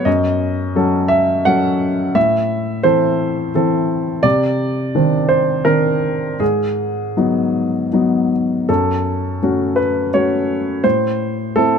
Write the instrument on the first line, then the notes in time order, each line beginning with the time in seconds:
grand piano
0.05 F#2 D#5
0.75 F#3 C#4 A4
1.08 E5
1.45 F#3 C#4 A4 F#5
2.15 A2 E5
2.83 E3 C4 A4 C5
3.55 E3 C4 A4
4.23 C3 D5
4.95 D#3 C4 D4
5.29 C5
5.65 D#3 C4 D4 A#4
6.40 G#2 G#4
7.17 F#3 B3 D#4
7.93 F#3 B3 D#4
8.69 F#2 A4
9.42 A3 C#4 F#4
9.76 B4
10.14 A3 C#4 F#4 C#5
10.84 A2 C5
11.56 A3 C4 E4 A4